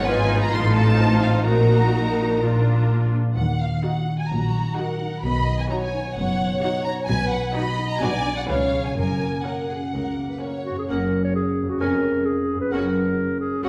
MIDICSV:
0, 0, Header, 1, 9, 480
1, 0, Start_track
1, 0, Key_signature, -6, "minor"
1, 0, Tempo, 472069
1, 1500, Time_signature, 4, 2, 24, 8
1, 4381, Tempo, 464396
1, 7254, Key_signature, 6, "major"
1, 8701, Tempo, 481541
1, 11101, Tempo, 457317
1, 14033, End_track
2, 0, Start_track
2, 0, Title_t, "Violin section"
2, 0, Program_c, 0, 48
2, 53, Note_on_c, 0, 80, 96
2, 412, Note_off_c, 0, 80, 0
2, 415, Note_on_c, 0, 82, 93
2, 531, Note_on_c, 0, 84, 91
2, 532, Note_off_c, 0, 82, 0
2, 766, Note_on_c, 0, 81, 105
2, 771, Note_off_c, 0, 84, 0
2, 1241, Note_off_c, 0, 81, 0
2, 1251, Note_on_c, 0, 77, 83
2, 1487, Note_on_c, 0, 82, 82
2, 1498, Note_off_c, 0, 77, 0
2, 2911, Note_off_c, 0, 82, 0
2, 3415, Note_on_c, 0, 78, 76
2, 3642, Note_off_c, 0, 78, 0
2, 3674, Note_on_c, 0, 77, 68
2, 3906, Note_on_c, 0, 78, 63
2, 3908, Note_off_c, 0, 77, 0
2, 4262, Note_off_c, 0, 78, 0
2, 4275, Note_on_c, 0, 80, 69
2, 4376, Note_on_c, 0, 82, 72
2, 4385, Note_off_c, 0, 80, 0
2, 4861, Note_off_c, 0, 82, 0
2, 4864, Note_on_c, 0, 78, 67
2, 5337, Note_on_c, 0, 83, 75
2, 5343, Note_off_c, 0, 78, 0
2, 5693, Note_off_c, 0, 83, 0
2, 5705, Note_on_c, 0, 80, 69
2, 5753, Note_off_c, 0, 80, 0
2, 5828, Note_on_c, 0, 82, 68
2, 5875, Note_off_c, 0, 82, 0
2, 5935, Note_on_c, 0, 80, 69
2, 6289, Note_on_c, 0, 78, 85
2, 6291, Note_off_c, 0, 80, 0
2, 6756, Note_off_c, 0, 78, 0
2, 6769, Note_on_c, 0, 78, 82
2, 7006, Note_off_c, 0, 78, 0
2, 7006, Note_on_c, 0, 82, 95
2, 7088, Note_off_c, 0, 82, 0
2, 7237, Note_on_c, 0, 80, 103
2, 7480, Note_off_c, 0, 80, 0
2, 7487, Note_on_c, 0, 78, 80
2, 7724, Note_on_c, 0, 83, 93
2, 7731, Note_off_c, 0, 78, 0
2, 8091, Note_off_c, 0, 83, 0
2, 8095, Note_on_c, 0, 82, 92
2, 8202, Note_on_c, 0, 80, 97
2, 8213, Note_off_c, 0, 82, 0
2, 8571, Note_off_c, 0, 80, 0
2, 8576, Note_on_c, 0, 78, 78
2, 8625, Note_off_c, 0, 78, 0
2, 8692, Note_on_c, 0, 77, 76
2, 9046, Note_off_c, 0, 77, 0
2, 9068, Note_on_c, 0, 80, 70
2, 9160, Note_off_c, 0, 80, 0
2, 9172, Note_on_c, 0, 80, 77
2, 9649, Note_off_c, 0, 80, 0
2, 9660, Note_on_c, 0, 78, 58
2, 10861, Note_off_c, 0, 78, 0
2, 11095, Note_on_c, 0, 78, 38
2, 11324, Note_off_c, 0, 78, 0
2, 12055, Note_on_c, 0, 80, 36
2, 12282, Note_off_c, 0, 80, 0
2, 13011, Note_on_c, 0, 78, 39
2, 13240, Note_off_c, 0, 78, 0
2, 13973, Note_on_c, 0, 78, 43
2, 14033, Note_off_c, 0, 78, 0
2, 14033, End_track
3, 0, Start_track
3, 0, Title_t, "Violin section"
3, 0, Program_c, 1, 48
3, 59, Note_on_c, 1, 71, 81
3, 534, Note_off_c, 1, 71, 0
3, 534, Note_on_c, 1, 69, 78
3, 1011, Note_off_c, 1, 69, 0
3, 1015, Note_on_c, 1, 72, 71
3, 1485, Note_on_c, 1, 70, 77
3, 1502, Note_off_c, 1, 72, 0
3, 3145, Note_off_c, 1, 70, 0
3, 4391, Note_on_c, 1, 66, 55
3, 4835, Note_off_c, 1, 66, 0
3, 4868, Note_on_c, 1, 70, 58
3, 5345, Note_off_c, 1, 70, 0
3, 5347, Note_on_c, 1, 75, 71
3, 5825, Note_off_c, 1, 75, 0
3, 5829, Note_on_c, 1, 73, 69
3, 7228, Note_off_c, 1, 73, 0
3, 7260, Note_on_c, 1, 71, 82
3, 7728, Note_off_c, 1, 71, 0
3, 7734, Note_on_c, 1, 75, 75
3, 8206, Note_off_c, 1, 75, 0
3, 8222, Note_on_c, 1, 74, 79
3, 8702, Note_on_c, 1, 73, 67
3, 8703, Note_off_c, 1, 74, 0
3, 9170, Note_off_c, 1, 73, 0
3, 9180, Note_on_c, 1, 70, 59
3, 9606, Note_off_c, 1, 70, 0
3, 9663, Note_on_c, 1, 70, 55
3, 9886, Note_off_c, 1, 70, 0
3, 9904, Note_on_c, 1, 68, 43
3, 9984, Note_off_c, 1, 68, 0
3, 10141, Note_on_c, 1, 70, 47
3, 10493, Note_off_c, 1, 70, 0
3, 10506, Note_on_c, 1, 71, 39
3, 10620, Note_on_c, 1, 73, 50
3, 10621, Note_off_c, 1, 71, 0
3, 11098, Note_on_c, 1, 61, 42
3, 11100, Note_off_c, 1, 73, 0
3, 11326, Note_off_c, 1, 61, 0
3, 12062, Note_on_c, 1, 61, 36
3, 12286, Note_off_c, 1, 61, 0
3, 13033, Note_on_c, 1, 66, 46
3, 13251, Note_off_c, 1, 66, 0
3, 13979, Note_on_c, 1, 66, 39
3, 14033, Note_off_c, 1, 66, 0
3, 14033, End_track
4, 0, Start_track
4, 0, Title_t, "Clarinet"
4, 0, Program_c, 2, 71
4, 10857, Note_on_c, 2, 66, 45
4, 10971, Note_off_c, 2, 66, 0
4, 10987, Note_on_c, 2, 68, 41
4, 11039, Note_off_c, 2, 68, 0
4, 11094, Note_on_c, 2, 70, 54
4, 11455, Note_off_c, 2, 70, 0
4, 11465, Note_on_c, 2, 73, 53
4, 11572, Note_off_c, 2, 73, 0
4, 11578, Note_on_c, 2, 68, 57
4, 11942, Note_on_c, 2, 66, 44
4, 11958, Note_off_c, 2, 68, 0
4, 12049, Note_off_c, 2, 66, 0
4, 12055, Note_on_c, 2, 70, 66
4, 12527, Note_on_c, 2, 68, 53
4, 12543, Note_off_c, 2, 70, 0
4, 12889, Note_off_c, 2, 68, 0
4, 12895, Note_on_c, 2, 71, 48
4, 13012, Note_on_c, 2, 70, 59
4, 13028, Note_off_c, 2, 71, 0
4, 13719, Note_off_c, 2, 70, 0
4, 13725, Note_on_c, 2, 68, 53
4, 13967, Note_off_c, 2, 68, 0
4, 13972, Note_on_c, 2, 66, 56
4, 14033, Note_off_c, 2, 66, 0
4, 14033, End_track
5, 0, Start_track
5, 0, Title_t, "French horn section"
5, 0, Program_c, 3, 60
5, 11104, Note_on_c, 3, 66, 41
5, 11107, Note_on_c, 3, 61, 48
5, 12026, Note_off_c, 3, 66, 0
5, 12060, Note_on_c, 3, 68, 43
5, 13977, Note_off_c, 3, 68, 0
5, 13977, Note_on_c, 3, 66, 46
5, 14033, Note_off_c, 3, 61, 0
5, 14033, Note_off_c, 3, 66, 0
5, 14033, End_track
6, 0, Start_track
6, 0, Title_t, "Viola section"
6, 0, Program_c, 4, 48
6, 61, Note_on_c, 4, 63, 67
6, 61, Note_on_c, 4, 65, 71
6, 520, Note_off_c, 4, 63, 0
6, 520, Note_off_c, 4, 65, 0
6, 532, Note_on_c, 4, 63, 73
6, 532, Note_on_c, 4, 65, 74
6, 1479, Note_off_c, 4, 63, 0
6, 1479, Note_off_c, 4, 65, 0
6, 1494, Note_on_c, 4, 66, 63
6, 1497, Note_on_c, 4, 63, 56
6, 2445, Note_off_c, 4, 63, 0
6, 2459, Note_on_c, 4, 65, 50
6, 2460, Note_on_c, 4, 62, 56
6, 2462, Note_off_c, 4, 66, 0
6, 3204, Note_off_c, 4, 65, 0
6, 3219, Note_off_c, 4, 62, 0
6, 3903, Note_on_c, 4, 66, 49
6, 3906, Note_on_c, 4, 63, 56
6, 4258, Note_off_c, 4, 66, 0
6, 4259, Note_off_c, 4, 63, 0
6, 4862, Note_on_c, 4, 66, 60
6, 4863, Note_on_c, 4, 63, 53
6, 5220, Note_off_c, 4, 63, 0
6, 5220, Note_off_c, 4, 66, 0
6, 5820, Note_on_c, 4, 66, 58
6, 5821, Note_on_c, 4, 63, 56
6, 6179, Note_off_c, 4, 63, 0
6, 6179, Note_off_c, 4, 66, 0
6, 6775, Note_on_c, 4, 66, 66
6, 6776, Note_on_c, 4, 63, 64
6, 7130, Note_off_c, 4, 63, 0
6, 7130, Note_off_c, 4, 66, 0
6, 7737, Note_on_c, 4, 66, 67
6, 7738, Note_on_c, 4, 63, 68
6, 8094, Note_off_c, 4, 66, 0
6, 8095, Note_off_c, 4, 63, 0
6, 8218, Note_on_c, 4, 62, 75
6, 8219, Note_on_c, 4, 66, 70
6, 8576, Note_off_c, 4, 62, 0
6, 8577, Note_off_c, 4, 66, 0
6, 8702, Note_on_c, 4, 61, 62
6, 8704, Note_on_c, 4, 71, 66
6, 9056, Note_off_c, 4, 61, 0
6, 9057, Note_off_c, 4, 71, 0
6, 9661, Note_on_c, 4, 61, 50
6, 9662, Note_on_c, 4, 70, 47
6, 10018, Note_off_c, 4, 61, 0
6, 10019, Note_off_c, 4, 70, 0
6, 10624, Note_on_c, 4, 61, 47
6, 10624, Note_on_c, 4, 70, 42
6, 10981, Note_off_c, 4, 61, 0
6, 10981, Note_off_c, 4, 70, 0
6, 11098, Note_on_c, 4, 58, 38
6, 11326, Note_off_c, 4, 58, 0
6, 12062, Note_on_c, 4, 61, 42
6, 12287, Note_off_c, 4, 61, 0
6, 13020, Note_on_c, 4, 61, 42
6, 13244, Note_off_c, 4, 61, 0
6, 13979, Note_on_c, 4, 61, 46
6, 14033, Note_off_c, 4, 61, 0
6, 14033, End_track
7, 0, Start_track
7, 0, Title_t, "Harp"
7, 0, Program_c, 5, 46
7, 0, Note_on_c, 5, 44, 75
7, 0, Note_on_c, 5, 59, 56
7, 0, Note_on_c, 5, 63, 52
7, 60, Note_on_c, 5, 65, 69
7, 285, Note_off_c, 5, 63, 0
7, 297, Note_on_c, 5, 63, 52
7, 532, Note_on_c, 5, 45, 65
7, 552, Note_off_c, 5, 44, 0
7, 555, Note_off_c, 5, 59, 0
7, 772, Note_on_c, 5, 60, 53
7, 1000, Note_off_c, 5, 65, 0
7, 1013, Note_on_c, 5, 65, 52
7, 1244, Note_off_c, 5, 63, 0
7, 1256, Note_on_c, 5, 63, 48
7, 1500, Note_on_c, 5, 46, 61
7, 1518, Note_off_c, 5, 45, 0
7, 1519, Note_off_c, 5, 60, 0
7, 1520, Note_off_c, 5, 65, 0
7, 1746, Note_on_c, 5, 58, 48
7, 1988, Note_on_c, 5, 66, 52
7, 2211, Note_off_c, 5, 63, 0
7, 2224, Note_on_c, 5, 63, 40
7, 2455, Note_off_c, 5, 46, 0
7, 2467, Note_on_c, 5, 46, 55
7, 2485, Note_off_c, 5, 63, 0
7, 2488, Note_off_c, 5, 66, 0
7, 2695, Note_off_c, 5, 58, 0
7, 2707, Note_on_c, 5, 58, 45
7, 2950, Note_on_c, 5, 65, 44
7, 3189, Note_on_c, 5, 62, 40
7, 3432, Note_on_c, 5, 51, 52
7, 3446, Note_off_c, 5, 46, 0
7, 3446, Note_off_c, 5, 62, 0
7, 3446, Note_off_c, 5, 65, 0
7, 3672, Note_on_c, 5, 63, 41
7, 3909, Note_on_c, 5, 66, 52
7, 4134, Note_off_c, 5, 63, 0
7, 4147, Note_on_c, 5, 63, 36
7, 4389, Note_on_c, 5, 54, 42
7, 4620, Note_off_c, 5, 63, 0
7, 4632, Note_on_c, 5, 63, 49
7, 4863, Note_off_c, 5, 66, 0
7, 4875, Note_on_c, 5, 66, 44
7, 5099, Note_off_c, 5, 63, 0
7, 5112, Note_on_c, 5, 63, 44
7, 5357, Note_on_c, 5, 47, 55
7, 5362, Note_off_c, 5, 58, 0
7, 5365, Note_off_c, 5, 51, 0
7, 5577, Note_off_c, 5, 54, 0
7, 5590, Note_on_c, 5, 54, 45
7, 5816, Note_off_c, 5, 66, 0
7, 5828, Note_on_c, 5, 66, 51
7, 6053, Note_off_c, 5, 63, 0
7, 6065, Note_on_c, 5, 63, 49
7, 6305, Note_on_c, 5, 59, 49
7, 6532, Note_off_c, 5, 54, 0
7, 6545, Note_on_c, 5, 54, 53
7, 6776, Note_off_c, 5, 66, 0
7, 6788, Note_on_c, 5, 66, 54
7, 7001, Note_off_c, 5, 63, 0
7, 7014, Note_on_c, 5, 63, 49
7, 7246, Note_off_c, 5, 47, 0
7, 7259, Note_on_c, 5, 47, 63
7, 7489, Note_off_c, 5, 54, 0
7, 7501, Note_on_c, 5, 54, 50
7, 7721, Note_off_c, 5, 66, 0
7, 7733, Note_on_c, 5, 66, 60
7, 7965, Note_off_c, 5, 63, 0
7, 7977, Note_on_c, 5, 63, 51
7, 8211, Note_off_c, 5, 47, 0
7, 8223, Note_on_c, 5, 47, 60
7, 8236, Note_off_c, 5, 63, 0
7, 8459, Note_on_c, 5, 62, 58
7, 8467, Note_on_c, 5, 68, 58
7, 8701, Note_on_c, 5, 49, 63
7, 8718, Note_off_c, 5, 66, 0
7, 8720, Note_off_c, 5, 62, 0
7, 8722, Note_off_c, 5, 47, 0
7, 8723, Note_off_c, 5, 54, 0
7, 8932, Note_off_c, 5, 68, 0
7, 8937, Note_on_c, 5, 61, 37
7, 8948, Note_on_c, 5, 68, 41
7, 9179, Note_on_c, 5, 42, 58
7, 9198, Note_off_c, 5, 49, 0
7, 9198, Note_off_c, 5, 59, 0
7, 9200, Note_off_c, 5, 68, 0
7, 9423, Note_on_c, 5, 58, 36
7, 9665, Note_on_c, 5, 66, 39
7, 9892, Note_off_c, 5, 61, 0
7, 9904, Note_on_c, 5, 61, 38
7, 10141, Note_on_c, 5, 49, 35
7, 10366, Note_off_c, 5, 58, 0
7, 10378, Note_on_c, 5, 58, 39
7, 10608, Note_off_c, 5, 66, 0
7, 10620, Note_on_c, 5, 66, 36
7, 10848, Note_off_c, 5, 61, 0
7, 10860, Note_on_c, 5, 61, 31
7, 10899, Note_off_c, 5, 42, 0
7, 10911, Note_on_c, 5, 42, 34
7, 10944, Note_off_c, 5, 58, 0
7, 10955, Note_on_c, 5, 58, 29
7, 10990, Note_off_c, 5, 61, 0
7, 11002, Note_on_c, 5, 61, 31
7, 11033, Note_off_c, 5, 66, 0
7, 11045, Note_on_c, 5, 66, 28
7, 11119, Note_off_c, 5, 49, 0
7, 11865, Note_on_c, 5, 41, 35
7, 11898, Note_off_c, 5, 61, 0
7, 11911, Note_on_c, 5, 61, 31
7, 11958, Note_on_c, 5, 68, 30
7, 11985, Note_off_c, 5, 42, 0
7, 12009, Note_off_c, 5, 58, 0
7, 12056, Note_off_c, 5, 66, 0
7, 12830, Note_on_c, 5, 42, 40
7, 12866, Note_off_c, 5, 61, 0
7, 12878, Note_on_c, 5, 61, 29
7, 12921, Note_on_c, 5, 66, 31
7, 12942, Note_off_c, 5, 41, 0
7, 12989, Note_off_c, 5, 68, 0
7, 14033, Note_off_c, 5, 42, 0
7, 14033, Note_off_c, 5, 61, 0
7, 14033, Note_off_c, 5, 66, 0
7, 14033, End_track
8, 0, Start_track
8, 0, Title_t, "Cello section"
8, 0, Program_c, 6, 48
8, 0, Note_on_c, 6, 44, 76
8, 501, Note_off_c, 6, 44, 0
8, 540, Note_on_c, 6, 45, 75
8, 1501, Note_on_c, 6, 46, 61
8, 1502, Note_off_c, 6, 45, 0
8, 3188, Note_off_c, 6, 46, 0
8, 3435, Note_on_c, 6, 51, 60
8, 3808, Note_off_c, 6, 51, 0
8, 4387, Note_on_c, 6, 46, 67
8, 4766, Note_off_c, 6, 46, 0
8, 5348, Note_on_c, 6, 47, 63
8, 5725, Note_off_c, 6, 47, 0
8, 6311, Note_on_c, 6, 42, 76
8, 6682, Note_off_c, 6, 42, 0
8, 7260, Note_on_c, 6, 47, 78
8, 7637, Note_off_c, 6, 47, 0
8, 8224, Note_on_c, 6, 47, 87
8, 8602, Note_off_c, 6, 47, 0
8, 8703, Note_on_c, 6, 49, 71
8, 9079, Note_off_c, 6, 49, 0
8, 9182, Note_on_c, 6, 42, 60
8, 9563, Note_off_c, 6, 42, 0
8, 10147, Note_on_c, 6, 37, 49
8, 10523, Note_off_c, 6, 37, 0
8, 11098, Note_on_c, 6, 42, 43
8, 11504, Note_off_c, 6, 42, 0
8, 12058, Note_on_c, 6, 41, 46
8, 12461, Note_off_c, 6, 41, 0
8, 13023, Note_on_c, 6, 42, 41
8, 13422, Note_off_c, 6, 42, 0
8, 13977, Note_on_c, 6, 37, 43
8, 14033, Note_off_c, 6, 37, 0
8, 14033, End_track
9, 0, Start_track
9, 0, Title_t, "Double bass section"
9, 0, Program_c, 7, 48
9, 0, Note_on_c, 7, 32, 81
9, 490, Note_off_c, 7, 32, 0
9, 530, Note_on_c, 7, 33, 75
9, 1494, Note_on_c, 7, 34, 65
9, 1498, Note_off_c, 7, 33, 0
9, 3185, Note_off_c, 7, 34, 0
9, 3427, Note_on_c, 7, 39, 58
9, 3804, Note_off_c, 7, 39, 0
9, 4384, Note_on_c, 7, 34, 62
9, 4764, Note_off_c, 7, 34, 0
9, 5347, Note_on_c, 7, 35, 73
9, 5724, Note_off_c, 7, 35, 0
9, 6305, Note_on_c, 7, 30, 66
9, 6679, Note_off_c, 7, 30, 0
9, 7254, Note_on_c, 7, 35, 83
9, 7634, Note_off_c, 7, 35, 0
9, 8224, Note_on_c, 7, 35, 71
9, 8602, Note_off_c, 7, 35, 0
9, 8699, Note_on_c, 7, 37, 64
9, 9077, Note_off_c, 7, 37, 0
9, 9172, Note_on_c, 7, 30, 67
9, 9557, Note_off_c, 7, 30, 0
9, 10141, Note_on_c, 7, 37, 49
9, 10520, Note_off_c, 7, 37, 0
9, 11094, Note_on_c, 7, 30, 47
9, 11501, Note_off_c, 7, 30, 0
9, 12057, Note_on_c, 7, 29, 41
9, 12460, Note_off_c, 7, 29, 0
9, 13018, Note_on_c, 7, 30, 44
9, 13419, Note_off_c, 7, 30, 0
9, 13973, Note_on_c, 7, 37, 42
9, 14033, Note_off_c, 7, 37, 0
9, 14033, End_track
0, 0, End_of_file